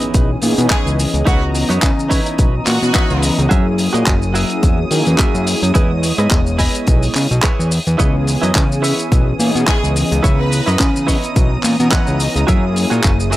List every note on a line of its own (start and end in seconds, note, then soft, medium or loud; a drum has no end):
0.00 0.39 E3 medium
0.00 0.39 B3 medium
0.00 0.39 C#4 medium
0.00 0.29 D#4 medium
0.00 0.30 E4 medium
0.00 0.40 G#4 medium
0.00 0.30 B4 medium
0.00 0.30 D#5 loud
0.00 7.98 D#6 medium
0.00 closed hi-hat medium
0.00 impact medium
0.00 shaker medium
0.14 0.36 B1 loud
0.14 kick loud
0.14 closed hi-hat medium
0.14 shaker medium
0.42 0.54 A#2 medium
0.42 0.67 E3 loud
0.42 0.67 B3 loud
0.42 0.67 C#4 loud
0.42 0.68 D#4 loud
0.42 0.68 G#4 loud
0.42 open hi-hat loud
0.42 shaker medium
0.58 0.67 B2 loud
0.58 closed hi-hat medium
0.58 shaker medium
0.69 1.23 E3 medium
0.69 1.24 B3 medium
0.69 1.24 C#4 medium
0.69 0.98 D#4 medium
0.69 0.98 E4 medium
0.69 0.87 G#4 medium
0.69 1.24 G#4 loud
0.69 0.98 B4 medium
0.69 0.98 C#5 medium
0.69 1.24 D#5 medium
0.69 kick loud
0.69 clap loud
0.69 closed hi-hat medium
0.69 shaker medium
0.86 1.06 C#2 medium
0.86 shaker medium
0.99 open hi-hat loud
0.99 shaker medium
1.14 1.23 C#2 medium
1.14 closed hi-hat medium
1.14 shaker soft
1.25 1.64 C#2 loud
1.25 2.78 E3 medium
1.25 2.78 B3 medium
1.25 2.78 C#4 medium
1.25 1.42 D#4 loud
1.25 1.42 E4 loud
1.25 1.43 F#4 medium
1.25 1.42 B4 loud
1.25 1.42 C#5 loud
1.25 2.79 D#5 medium
1.25 2.79 A#5 medium
1.25 kick loud
1.25 closed hi-hat medium
1.25 shaker medium
1.54 muted clean electric guitar stroke soft
1.54 open hi-hat loud
1.54 shaker medium
1.69 1.79 F#2 loud
1.69 1.90 D#4 medium
1.69 1.90 E4 medium
1.69 1.90 B4 medium
1.69 1.90 C#5 loud
1.69 closed hi-hat medium
1.69 shaker soft
1.82 2.20 C#3 medium
1.82 kick loud
1.82 clap loud
1.82 closed hi-hat medium
1.82 shaker medium
2.00 shaker soft
2.09 2.54 D#4 medium
2.09 2.54 E4 medium
2.09 2.54 B4 medium
2.09 2.54 C#5 medium
2.09 kick medium
2.09 open hi-hat loud
2.09 shaker medium
2.26 closed hi-hat medium
2.26 shaker soft
2.38 2.61 B1 medium
2.38 kick loud
2.38 closed hi-hat medium
2.38 shaker medium
2.66 2.79 A#2 medium
2.66 3.46 F#4 loud
2.66 clap medium
2.66 open hi-hat loud
2.66 shaker medium
2.81 2.92 B2 loud
2.81 3.47 E3 loud
2.81 3.47 B3 medium
2.81 3.48 C#4 medium
2.81 3.48 D#5 medium
2.81 3.48 A#5 loud
2.81 closed hi-hat medium
2.81 shaker medium
2.93 3.22 D#4 medium
2.93 3.23 E4 medium
2.93 3.23 B4 medium
2.93 3.23 D#5 medium
2.93 kick loud
2.93 clap loud
2.93 closed hi-hat medium
2.93 shaker medium
3.10 3.31 C#2 loud
3.10 shaker soft
3.22 open hi-hat loud
3.22 shaker loud
3.38 3.48 C#2 loud
3.38 closed hi-hat medium
3.38 shaker soft
3.49 3.88 F#2 loud
3.49 4.88 F#3 medium
3.49 4.88 A#3 medium
3.49 4.88 C#4 medium
3.49 4.88 E4 medium
3.49 3.65 F#4 loud
3.49 3.66 G#4 loud
3.49 4.89 G#4 medium
3.49 3.66 A#4 loud
3.49 3.66 E5 loud
3.49 kick loud
3.49 closed hi-hat medium
3.49 shaker medium
3.77 muted clean electric guitar stroke soft
3.77 open hi-hat loud
3.77 shaker medium
3.93 4.04 A#2 loud
3.93 4.14 F#4 medium
3.93 4.14 G#4 medium
3.93 4.14 A#4 medium
3.93 4.15 D#5 loud
3.93 closed hi-hat medium
3.93 shaker medium
4.06 4.44 F#1 medium
4.06 kick loud
4.06 clap loud
4.06 closed hi-hat medium
4.06 shaker medium
4.22 shaker soft
4.34 4.78 F#4 medium
4.34 4.78 G#4 medium
4.34 4.79 A#4 medium
4.34 4.79 E5 loud
4.34 open hi-hat loud
4.34 shaker medium
4.50 closed hi-hat medium
4.50 shaker medium
4.63 4.85 E2 medium
4.63 kick loud
4.63 closed hi-hat medium
4.63 shaker medium
4.90 5.03 D#3 loud
4.90 5.16 F#3 loud
4.90 5.16 A#3 loud
4.90 5.16 C#4 loud
4.90 5.16 E4 loud
4.90 5.16 G#4 loud
4.90 open hi-hat loud
4.90 shaker medium
5.06 5.16 E2 loud
5.06 closed hi-hat medium
5.06 shaker soft
5.18 5.72 F#3 medium
5.18 5.72 A#3 medium
5.18 5.72 C#4 medium
5.18 5.72 E4 medium
5.18 5.46 F#4 medium
5.18 5.47 G#4 medium
5.18 5.73 G#4 loud
5.18 5.47 A#4 medium
5.18 5.47 E5 loud
5.18 kick loud
5.18 clap loud
5.18 closed hi-hat medium
5.18 shaker medium
5.35 5.55 F#2 medium
5.35 shaker soft
5.47 open hi-hat loud
5.47 shaker medium
5.62 5.72 F#2 loud
5.62 closed hi-hat medium
5.62 shaker soft
5.74 6.13 E2 medium
5.74 7.27 G#3 medium
5.74 7.27 B3 medium
5.74 5.90 E4 loud
5.74 7.28 E4 medium
5.74 5.90 G#4 loud
5.74 5.91 B4 loud
5.74 7.28 C#5 medium
5.74 7.27 D#5 medium
5.74 5.91 D#5 loud
5.74 kick loud
5.74 closed hi-hat medium
5.74 shaker medium
6.02 muted clean electric guitar stroke soft
6.02 open hi-hat loud
6.02 shaker medium
6.18 6.28 G#2 loud
6.18 6.39 E4 medium
6.18 6.39 G#4 medium
6.18 6.39 B4 medium
6.18 6.39 D#5 medium
6.18 closed hi-hat medium
6.18 shaker medium
6.31 6.69 E1 medium
6.31 kick loud
6.31 clap loud
6.31 closed hi-hat medium
6.31 shaker medium
6.47 shaker soft
6.58 7.02 E4 medium
6.58 7.03 G#4 medium
6.58 7.03 B4 medium
6.58 7.03 D#5 medium
6.58 kick medium
6.58 open hi-hat loud
6.58 shaker medium
6.75 closed hi-hat medium
6.75 shaker medium
6.87 7.09 B1 loud
6.87 kick loud
6.87 closed hi-hat medium
6.87 shaker medium
7.03 open hi-hat medium
7.03 shaker soft
7.15 7.27 C#3 medium
7.15 clap medium
7.15 open hi-hat loud
7.15 shaker medium
7.31 7.40 B1 loud
7.31 closed hi-hat medium
7.31 shaker medium
7.42 7.71 E4 medium
7.42 7.71 G#4 medium
7.42 7.71 B4 medium
7.42 7.72 C#5 loud
7.42 kick loud
7.42 clap loud
7.42 closed hi-hat medium
7.42 shaker medium
7.59 7.80 E2 loud
7.59 shaker medium
7.72 open hi-hat loud
7.72 shaker medium
7.87 7.96 E2 loud
7.87 closed hi-hat medium
7.87 shaker medium
7.98 8.37 C#2 loud
7.98 9.36 E3 medium
7.98 9.36 B3 medium
7.98 9.36 C#4 medium
7.98 8.14 E4 loud
7.98 9.37 G#4 medium
7.98 8.15 B4 loud
7.98 8.15 C#5 loud
7.98 8.15 D#5 loud
7.98 13.37 D#6 medium
7.98 kick loud
7.98 closed hi-hat medium
7.98 shaker medium
8.26 muted clean electric guitar stroke soft
8.26 open hi-hat loud
8.26 shaker medium
8.42 8.52 F#2 loud
8.42 8.63 E4 loud
8.42 8.63 B4 medium
8.42 8.63 C#5 medium
8.42 8.63 D#5 loud
8.42 closed hi-hat medium
8.42 shaker medium
8.55 8.93 C#3 medium
8.55 kick loud
8.55 clap loud
8.55 closed hi-hat medium
8.55 shaker medium
8.72 shaker soft
8.82 9.26 E4 medium
8.82 9.27 B4 medium
8.82 9.27 C#5 medium
8.82 9.27 E5 loud
8.82 open hi-hat loud
8.82 shaker medium
8.99 closed hi-hat medium
8.99 shaker medium
9.12 9.34 B1 loud
9.12 kick loud
9.12 closed hi-hat medium
9.12 shaker medium
9.39 9.51 A#2 loud
9.39 9.64 E3 loud
9.39 9.64 B3 medium
9.39 9.65 C#4 loud
9.39 9.65 D#4 medium
9.39 9.65 G#4 loud
9.39 open hi-hat loud
9.39 shaker loud
9.55 9.65 B2 loud
9.55 closed hi-hat medium
9.55 shaker medium
9.66 10.20 E3 medium
9.66 10.21 B3 medium
9.66 10.21 C#4 medium
9.66 9.95 E4 medium
9.66 9.84 G#4 loud
9.66 10.21 G#4 medium
9.66 9.95 B4 medium
9.66 9.96 C#5 medium
9.66 10.21 D#5 medium
9.66 9.96 D#5 loud
9.66 kick loud
9.66 clap loud
9.66 closed hi-hat medium
9.66 shaker medium
9.83 10.04 C#2 loud
9.83 shaker medium
9.96 open hi-hat loud
9.96 shaker medium
10.12 10.21 C#2 loud
10.12 closed hi-hat medium
10.12 shaker soft
10.23 10.61 C#2 medium
10.23 11.75 E3 medium
10.23 11.76 B3 medium
10.23 11.76 C#4 medium
10.23 10.39 E4 loud
10.23 10.39 B4 loud
10.23 10.39 C#5 loud
10.23 10.39 E5 loud
10.23 11.76 A#5 medium
10.23 kick loud
10.23 closed hi-hat medium
10.23 shaker medium
10.39 10.95 B4 loud
10.51 muted clean electric guitar stroke soft
10.51 open hi-hat loud
10.51 shaker medium
10.66 10.77 F#2 loud
10.66 10.87 E4 medium
10.66 10.87 B4 medium
10.66 10.88 C#5 medium
10.66 10.88 D#5 loud
10.66 closed hi-hat medium
10.66 shaker soft
10.79 11.17 C#3 medium
10.79 kick loud
10.79 clap loud
10.79 closed hi-hat medium
10.79 shaker medium
10.96 shaker medium
11.07 11.51 E4 medium
11.07 11.51 B4 medium
11.07 11.51 C#5 medium
11.07 11.52 D#5 loud
11.07 kick medium
11.07 open hi-hat loud
11.07 shaker medium
11.23 closed hi-hat medium
11.23 shaker medium
11.36 11.58 B1 medium
11.36 kick loud
11.36 closed hi-hat medium
11.36 shaker medium
11.63 11.76 A#2 medium
11.63 clap medium
11.63 open hi-hat loud
11.63 shaker loud
11.79 11.89 B2 loud
11.79 12.45 E3 medium
11.79 12.45 B3 medium
11.79 12.45 C#4 medium
11.79 12.46 D#5 medium
11.79 12.46 A#5 loud
11.79 closed hi-hat medium
11.79 shaker medium
11.91 12.19 E4 medium
11.91 12.20 B4 medium
11.91 12.20 C#5 medium
11.91 12.20 F#5 loud
11.91 kick loud
11.91 clap loud
11.91 closed hi-hat medium
11.91 shaker medium
12.07 12.28 C#2 loud
12.07 shaker medium
12.20 open hi-hat loud
12.20 shaker medium
12.36 12.45 C#2 loud
12.36 closed hi-hat medium
12.36 shaker soft
12.47 12.86 F#2 loud
12.47 13.37 F#3 medium
12.47 13.37 A#3 medium
12.47 13.37 C#4 medium
12.47 13.37 E4 medium
12.47 12.63 F#4 loud
12.47 12.63 G#4 loud
12.47 13.37 G#4 medium
12.47 12.64 A#4 loud
12.47 12.64 E5 loud
12.47 kick loud
12.47 closed hi-hat medium
12.47 shaker medium
12.75 muted clean electric guitar stroke soft
12.75 open hi-hat loud
12.75 shaker medium
12.90 13.01 A#2 loud
12.90 13.11 F#4 medium
12.90 13.11 G#4 medium
12.90 13.12 A#4 medium
12.90 13.12 C#5 loud
12.90 closed hi-hat medium
12.90 shaker medium
13.04 13.37 F#1 medium
13.04 kick loud
13.04 clap loud
13.04 closed hi-hat medium
13.04 shaker medium
13.20 shaker soft
13.31 13.37 F#4 medium
13.31 13.37 G#4 medium
13.31 13.37 A#4 medium
13.31 13.37 E5 loud
13.31 open hi-hat loud
13.31 shaker loud